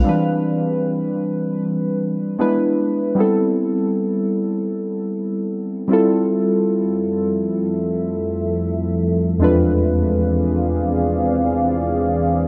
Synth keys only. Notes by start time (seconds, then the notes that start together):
0.04 E3 G3 C4 D4
0.09 B4
2.39 G#3 B3 D4 E4 B4
3.15 G3 B3 C4
3.19 E4 A4
5.88 G3 C4 E4 F4
5.93 A4
9.39 E2 G#3 C4 D4
9.43 F4 B4